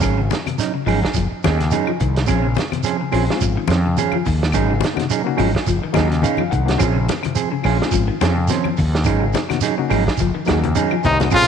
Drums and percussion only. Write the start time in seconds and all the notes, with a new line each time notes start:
0.01 kick, closed hi-hat, high conga, claves, shekere
0.30 snare, closed hi-hat, high conga, shekere
0.47 closed hi-hat, high conga, claves
0.59 snare, closed hi-hat, high conga, shekere
0.86 open hi-hat, claves, shekere
1.04 kick, snare
1.14 kick, closed hi-hat, high conga, shekere
1.43 kick, snare, closed hi-hat, high conga, claves, shekere
1.60 snare, closed hi-hat
1.71 closed hi-hat, high conga, shekere
1.87 claves
2.00 kick, closed hi-hat, shekere
2.16 snare, closed hi-hat
2.26 kick, closed hi-hat, claves, shekere
2.54 closed hi-hat, high conga, shekere
2.59 snare
2.72 closed hi-hat, high conga, claves
2.83 closed hi-hat, high conga, shekere
3.12 open hi-hat, claves, shekere
3.30 snare
3.41 kick, closed hi-hat, shekere
3.68 snare, closed hi-hat, high conga, claves, shekere
3.97 closed hi-hat, high conga, shekere
4.12 high conga, claves
4.25 kick, open hi-hat, shekere
4.43 snare
4.52 kick, closed hi-hat, claves, shekere
4.81 snare, closed hi-hat, high conga, shekere
4.97 snare, closed hi-hat, high conga, claves
5.10 closed hi-hat, high conga, shekere
5.38 open hi-hat, high conga, claves, shekere
5.55 kick, snare
5.66 kick, closed hi-hat, high conga, shekere
5.94 kick, snare, closed hi-hat, high conga, claves, shekere
6.11 snare, closed hi-hat
6.22 closed hi-hat, high conga, shekere
6.37 high conga, claves
6.52 kick, closed hi-hat, shekere
6.68 snare, closed hi-hat
6.79 kick, closed hi-hat, high conga, claves, shekere
7.08 snare, closed hi-hat, high conga, shekere
7.23 closed hi-hat, high conga, claves
7.36 closed hi-hat, high conga, shekere
7.64 open hi-hat, claves, shekere
7.82 snare
7.91 kick, closed hi-hat, shekere
8.21 snare, closed hi-hat, high conga, claves, shekere
8.48 snare, closed hi-hat, high conga, shekere
8.64 high conga, claves
8.77 kick, open hi-hat, shekere
8.95 snare
9.04 kick, closed hi-hat, claves, shekere
9.33 snare, closed hi-hat, high conga, shekere
9.50 snare, closed hi-hat, high conga, claves
9.61 snare, closed hi-hat, shekere
9.65 high conga
9.90 open hi-hat, claves, shekere
10.07 kick, snare
10.17 kick, closed hi-hat, high conga, shekere
10.45 kick, snare, closed hi-hat, claves, shekere
10.49 high conga
10.63 closed hi-hat, high conga
10.75 closed hi-hat, high conga, shekere
10.91 claves
11.03 kick, closed hi-hat, low conga, shekere
11.20 snare, closed hi-hat, low conga
11.31 kick, crash, claves, shekere